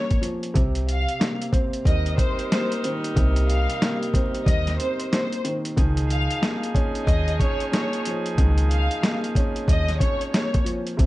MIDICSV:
0, 0, Header, 1, 6, 480
1, 0, Start_track
1, 0, Tempo, 652174
1, 408, Time_signature, 4, 2, 24, 8
1, 8141, End_track
2, 0, Start_track
2, 0, Title_t, "Violin section"
2, 0, Program_c, 0, 48
2, 0, Note_on_c, 0, 73, 75
2, 140, Note_off_c, 0, 73, 0
2, 655, Note_on_c, 0, 77, 86
2, 1016, Note_off_c, 0, 77, 0
2, 1374, Note_on_c, 0, 75, 79
2, 1587, Note_off_c, 0, 75, 0
2, 1602, Note_on_c, 0, 72, 83
2, 1820, Note_off_c, 0, 72, 0
2, 1849, Note_on_c, 0, 72, 84
2, 2065, Note_off_c, 0, 72, 0
2, 2560, Note_on_c, 0, 77, 83
2, 2928, Note_off_c, 0, 77, 0
2, 3284, Note_on_c, 0, 75, 89
2, 3502, Note_off_c, 0, 75, 0
2, 3529, Note_on_c, 0, 72, 80
2, 3744, Note_off_c, 0, 72, 0
2, 3765, Note_on_c, 0, 72, 84
2, 3982, Note_off_c, 0, 72, 0
2, 4485, Note_on_c, 0, 77, 95
2, 4851, Note_off_c, 0, 77, 0
2, 5202, Note_on_c, 0, 75, 87
2, 5421, Note_off_c, 0, 75, 0
2, 5453, Note_on_c, 0, 73, 84
2, 5667, Note_off_c, 0, 73, 0
2, 5690, Note_on_c, 0, 73, 83
2, 5905, Note_off_c, 0, 73, 0
2, 6400, Note_on_c, 0, 77, 89
2, 6768, Note_off_c, 0, 77, 0
2, 7135, Note_on_c, 0, 75, 93
2, 7348, Note_off_c, 0, 75, 0
2, 7354, Note_on_c, 0, 73, 86
2, 7576, Note_off_c, 0, 73, 0
2, 7605, Note_on_c, 0, 73, 76
2, 7822, Note_off_c, 0, 73, 0
2, 8141, End_track
3, 0, Start_track
3, 0, Title_t, "Saxophone section"
3, 0, Program_c, 1, 65
3, 1361, Note_on_c, 1, 55, 90
3, 1362, Note_on_c, 1, 63, 85
3, 1362, Note_on_c, 1, 70, 102
3, 3975, Note_off_c, 1, 55, 0
3, 3975, Note_off_c, 1, 63, 0
3, 3976, Note_off_c, 1, 70, 0
3, 4252, Note_on_c, 1, 53, 84
3, 4252, Note_on_c, 1, 63, 86
3, 4253, Note_on_c, 1, 68, 100
3, 7821, Note_off_c, 1, 53, 0
3, 7821, Note_off_c, 1, 63, 0
3, 7821, Note_off_c, 1, 68, 0
3, 8141, End_track
4, 0, Start_track
4, 0, Title_t, "Upright piano"
4, 0, Program_c, 2, 0
4, 0, Control_c, 2, 64, 127
4, 0, Note_on_c, 2, 58, 87
4, 0, Note_on_c, 2, 61, 80
4, 157, Note_on_c, 2, 53, 80
4, 396, Note_on_c, 2, 48, 94
4, 399, Note_off_c, 2, 61, 0
4, 402, Note_off_c, 2, 53, 0
4, 411, Note_off_c, 2, 58, 0
4, 417, Control_c, 2, 64, 0
4, 546, Control_c, 2, 64, 127
4, 881, Note_on_c, 2, 58, 87
4, 1120, Note_on_c, 2, 60, 86
4, 1584, Note_off_c, 2, 60, 0
4, 1595, Note_on_c, 2, 60, 80
4, 1602, Note_off_c, 2, 48, 0
4, 1858, Note_off_c, 2, 58, 0
4, 1869, Note_on_c, 2, 58, 93
4, 2096, Note_on_c, 2, 51, 85
4, 2319, Note_on_c, 2, 48, 93
4, 2801, Note_off_c, 2, 58, 0
4, 2801, Note_off_c, 2, 60, 0
4, 2812, Note_on_c, 2, 58, 93
4, 3045, Note_on_c, 2, 60, 87
4, 3292, Note_off_c, 2, 51, 0
4, 3513, Note_off_c, 2, 60, 0
4, 3523, Note_off_c, 2, 48, 0
4, 3524, Note_on_c, 2, 60, 84
4, 3757, Note_off_c, 2, 58, 0
4, 3768, Note_on_c, 2, 58, 82
4, 4007, Note_on_c, 2, 51, 85
4, 4231, Note_off_c, 2, 51, 0
4, 4242, Note_on_c, 2, 51, 87
4, 4246, Note_off_c, 2, 60, 0
4, 4248, Note_off_c, 2, 58, 0
4, 4258, Control_c, 2, 64, 0
4, 4402, Control_c, 2, 64, 127
4, 4720, Note_on_c, 2, 58, 92
4, 4965, Note_on_c, 2, 61, 86
4, 5433, Note_off_c, 2, 61, 0
4, 5444, Note_on_c, 2, 61, 84
4, 5445, Note_off_c, 2, 51, 0
4, 5668, Note_off_c, 2, 58, 0
4, 5679, Note_on_c, 2, 58, 87
4, 5937, Note_on_c, 2, 53, 82
4, 6168, Note_on_c, 2, 51, 90
4, 6631, Note_off_c, 2, 58, 0
4, 6642, Note_on_c, 2, 58, 95
4, 6646, Note_off_c, 2, 61, 0
4, 6896, Note_on_c, 2, 61, 83
4, 7132, Note_off_c, 2, 53, 0
4, 7339, Note_off_c, 2, 61, 0
4, 7350, Note_on_c, 2, 61, 85
4, 7368, Note_off_c, 2, 51, 0
4, 7601, Note_off_c, 2, 58, 0
4, 7612, Note_on_c, 2, 58, 87
4, 7835, Note_on_c, 2, 53, 80
4, 8075, Note_on_c, 2, 48, 92
4, 8079, Note_off_c, 2, 61, 0
4, 8081, Note_off_c, 2, 53, 0
4, 8090, Note_off_c, 2, 58, 0
4, 8097, Control_c, 2, 64, 0
4, 8141, Note_off_c, 2, 48, 0
4, 8141, End_track
5, 0, Start_track
5, 0, Title_t, "Upright bass"
5, 0, Program_c, 3, 32
5, 409, Note_on_c, 3, 36, 108
5, 766, Note_off_c, 3, 36, 0
5, 1366, Note_on_c, 3, 39, 99
5, 1584, Note_off_c, 3, 39, 0
5, 2330, Note_on_c, 3, 36, 108
5, 2687, Note_off_c, 3, 36, 0
5, 3286, Note_on_c, 3, 39, 102
5, 3504, Note_off_c, 3, 39, 0
5, 4251, Note_on_c, 3, 37, 106
5, 4608, Note_off_c, 3, 37, 0
5, 5206, Note_on_c, 3, 39, 107
5, 5424, Note_off_c, 3, 39, 0
5, 6169, Note_on_c, 3, 37, 106
5, 6526, Note_off_c, 3, 37, 0
5, 7125, Note_on_c, 3, 39, 97
5, 7343, Note_off_c, 3, 39, 0
5, 8090, Note_on_c, 3, 36, 101
5, 8141, Note_off_c, 3, 36, 0
5, 8141, End_track
6, 0, Start_track
6, 0, Title_t, "Drums"
6, 78, Note_on_c, 9, 42, 54
6, 81, Note_on_c, 9, 36, 83
6, 151, Note_off_c, 9, 42, 0
6, 154, Note_off_c, 9, 36, 0
6, 169, Note_on_c, 9, 42, 83
6, 242, Note_off_c, 9, 42, 0
6, 317, Note_on_c, 9, 42, 54
6, 390, Note_off_c, 9, 42, 0
6, 407, Note_on_c, 9, 36, 116
6, 409, Note_on_c, 9, 42, 92
6, 481, Note_off_c, 9, 36, 0
6, 483, Note_off_c, 9, 42, 0
6, 553, Note_on_c, 9, 42, 55
6, 627, Note_off_c, 9, 42, 0
6, 652, Note_on_c, 9, 42, 66
6, 725, Note_off_c, 9, 42, 0
6, 798, Note_on_c, 9, 42, 52
6, 872, Note_off_c, 9, 42, 0
6, 891, Note_on_c, 9, 38, 118
6, 894, Note_on_c, 9, 42, 84
6, 964, Note_off_c, 9, 38, 0
6, 967, Note_off_c, 9, 42, 0
6, 1042, Note_on_c, 9, 42, 52
6, 1116, Note_off_c, 9, 42, 0
6, 1124, Note_on_c, 9, 36, 94
6, 1131, Note_on_c, 9, 42, 75
6, 1198, Note_off_c, 9, 36, 0
6, 1205, Note_off_c, 9, 42, 0
6, 1276, Note_on_c, 9, 42, 56
6, 1350, Note_off_c, 9, 42, 0
6, 1364, Note_on_c, 9, 36, 93
6, 1375, Note_on_c, 9, 42, 95
6, 1438, Note_off_c, 9, 36, 0
6, 1449, Note_off_c, 9, 42, 0
6, 1517, Note_on_c, 9, 42, 53
6, 1590, Note_off_c, 9, 42, 0
6, 1605, Note_on_c, 9, 36, 98
6, 1611, Note_on_c, 9, 42, 78
6, 1678, Note_off_c, 9, 36, 0
6, 1685, Note_off_c, 9, 42, 0
6, 1758, Note_on_c, 9, 42, 51
6, 1832, Note_off_c, 9, 42, 0
6, 1854, Note_on_c, 9, 42, 102
6, 1855, Note_on_c, 9, 38, 118
6, 1928, Note_off_c, 9, 42, 0
6, 1929, Note_off_c, 9, 38, 0
6, 2000, Note_on_c, 9, 42, 56
6, 2073, Note_off_c, 9, 42, 0
6, 2091, Note_on_c, 9, 42, 83
6, 2164, Note_off_c, 9, 42, 0
6, 2240, Note_on_c, 9, 42, 54
6, 2313, Note_off_c, 9, 42, 0
6, 2328, Note_on_c, 9, 36, 112
6, 2331, Note_on_c, 9, 42, 89
6, 2402, Note_off_c, 9, 36, 0
6, 2405, Note_off_c, 9, 42, 0
6, 2475, Note_on_c, 9, 42, 56
6, 2548, Note_off_c, 9, 42, 0
6, 2573, Note_on_c, 9, 42, 66
6, 2647, Note_off_c, 9, 42, 0
6, 2720, Note_on_c, 9, 42, 51
6, 2794, Note_off_c, 9, 42, 0
6, 2812, Note_on_c, 9, 38, 121
6, 2815, Note_on_c, 9, 42, 84
6, 2885, Note_off_c, 9, 38, 0
6, 2888, Note_off_c, 9, 42, 0
6, 2963, Note_on_c, 9, 42, 50
6, 3037, Note_off_c, 9, 42, 0
6, 3045, Note_on_c, 9, 36, 95
6, 3053, Note_on_c, 9, 42, 77
6, 3119, Note_off_c, 9, 36, 0
6, 3126, Note_off_c, 9, 42, 0
6, 3198, Note_on_c, 9, 42, 53
6, 3272, Note_off_c, 9, 42, 0
6, 3285, Note_on_c, 9, 36, 94
6, 3296, Note_on_c, 9, 42, 94
6, 3358, Note_off_c, 9, 36, 0
6, 3369, Note_off_c, 9, 42, 0
6, 3438, Note_on_c, 9, 42, 53
6, 3442, Note_on_c, 9, 38, 37
6, 3511, Note_off_c, 9, 42, 0
6, 3515, Note_off_c, 9, 38, 0
6, 3531, Note_on_c, 9, 42, 78
6, 3604, Note_off_c, 9, 42, 0
6, 3677, Note_on_c, 9, 42, 52
6, 3750, Note_off_c, 9, 42, 0
6, 3774, Note_on_c, 9, 38, 122
6, 3774, Note_on_c, 9, 42, 104
6, 3847, Note_off_c, 9, 42, 0
6, 3848, Note_off_c, 9, 38, 0
6, 3919, Note_on_c, 9, 42, 55
6, 3993, Note_off_c, 9, 42, 0
6, 4010, Note_on_c, 9, 42, 81
6, 4083, Note_off_c, 9, 42, 0
6, 4159, Note_on_c, 9, 42, 57
6, 4233, Note_off_c, 9, 42, 0
6, 4249, Note_on_c, 9, 36, 118
6, 4251, Note_on_c, 9, 42, 88
6, 4323, Note_off_c, 9, 36, 0
6, 4325, Note_off_c, 9, 42, 0
6, 4395, Note_on_c, 9, 42, 56
6, 4468, Note_off_c, 9, 42, 0
6, 4493, Note_on_c, 9, 42, 67
6, 4566, Note_off_c, 9, 42, 0
6, 4640, Note_on_c, 9, 42, 51
6, 4714, Note_off_c, 9, 42, 0
6, 4730, Note_on_c, 9, 38, 118
6, 4733, Note_on_c, 9, 42, 84
6, 4804, Note_off_c, 9, 38, 0
6, 4807, Note_off_c, 9, 42, 0
6, 4883, Note_on_c, 9, 42, 49
6, 4956, Note_off_c, 9, 42, 0
6, 4965, Note_on_c, 9, 36, 91
6, 4972, Note_on_c, 9, 42, 77
6, 5039, Note_off_c, 9, 36, 0
6, 5046, Note_off_c, 9, 42, 0
6, 5116, Note_on_c, 9, 42, 54
6, 5190, Note_off_c, 9, 42, 0
6, 5204, Note_on_c, 9, 36, 92
6, 5214, Note_on_c, 9, 42, 100
6, 5278, Note_off_c, 9, 36, 0
6, 5288, Note_off_c, 9, 42, 0
6, 5357, Note_on_c, 9, 42, 54
6, 5430, Note_off_c, 9, 42, 0
6, 5445, Note_on_c, 9, 36, 96
6, 5450, Note_on_c, 9, 42, 78
6, 5518, Note_off_c, 9, 36, 0
6, 5524, Note_off_c, 9, 42, 0
6, 5596, Note_on_c, 9, 42, 53
6, 5670, Note_off_c, 9, 42, 0
6, 5692, Note_on_c, 9, 42, 103
6, 5693, Note_on_c, 9, 38, 122
6, 5766, Note_off_c, 9, 42, 0
6, 5767, Note_off_c, 9, 38, 0
6, 5837, Note_on_c, 9, 42, 55
6, 5911, Note_off_c, 9, 42, 0
6, 5928, Note_on_c, 9, 42, 83
6, 6002, Note_off_c, 9, 42, 0
6, 6077, Note_on_c, 9, 42, 57
6, 6151, Note_off_c, 9, 42, 0
6, 6168, Note_on_c, 9, 36, 120
6, 6169, Note_on_c, 9, 42, 91
6, 6241, Note_off_c, 9, 36, 0
6, 6242, Note_off_c, 9, 42, 0
6, 6312, Note_on_c, 9, 42, 56
6, 6386, Note_off_c, 9, 42, 0
6, 6410, Note_on_c, 9, 42, 68
6, 6483, Note_off_c, 9, 42, 0
6, 6558, Note_on_c, 9, 42, 54
6, 6631, Note_off_c, 9, 42, 0
6, 6649, Note_on_c, 9, 38, 116
6, 6652, Note_on_c, 9, 42, 84
6, 6723, Note_off_c, 9, 38, 0
6, 6726, Note_off_c, 9, 42, 0
6, 6800, Note_on_c, 9, 42, 50
6, 6874, Note_off_c, 9, 42, 0
6, 6884, Note_on_c, 9, 36, 93
6, 6891, Note_on_c, 9, 42, 76
6, 6958, Note_off_c, 9, 36, 0
6, 6965, Note_off_c, 9, 42, 0
6, 7036, Note_on_c, 9, 42, 53
6, 7109, Note_off_c, 9, 42, 0
6, 7123, Note_on_c, 9, 36, 92
6, 7133, Note_on_c, 9, 42, 97
6, 7197, Note_off_c, 9, 36, 0
6, 7207, Note_off_c, 9, 42, 0
6, 7275, Note_on_c, 9, 42, 52
6, 7279, Note_on_c, 9, 38, 38
6, 7348, Note_off_c, 9, 42, 0
6, 7352, Note_off_c, 9, 38, 0
6, 7364, Note_on_c, 9, 36, 94
6, 7368, Note_on_c, 9, 42, 80
6, 7437, Note_off_c, 9, 36, 0
6, 7441, Note_off_c, 9, 42, 0
6, 7515, Note_on_c, 9, 42, 52
6, 7588, Note_off_c, 9, 42, 0
6, 7611, Note_on_c, 9, 42, 103
6, 7612, Note_on_c, 9, 38, 121
6, 7685, Note_off_c, 9, 38, 0
6, 7685, Note_off_c, 9, 42, 0
6, 7758, Note_on_c, 9, 42, 54
6, 7761, Note_on_c, 9, 36, 87
6, 7831, Note_off_c, 9, 42, 0
6, 7834, Note_off_c, 9, 36, 0
6, 7849, Note_on_c, 9, 42, 84
6, 7922, Note_off_c, 9, 42, 0
6, 7998, Note_on_c, 9, 42, 55
6, 8071, Note_off_c, 9, 42, 0
6, 8088, Note_on_c, 9, 36, 113
6, 8090, Note_on_c, 9, 42, 90
6, 8141, Note_off_c, 9, 36, 0
6, 8141, Note_off_c, 9, 42, 0
6, 8141, End_track
0, 0, End_of_file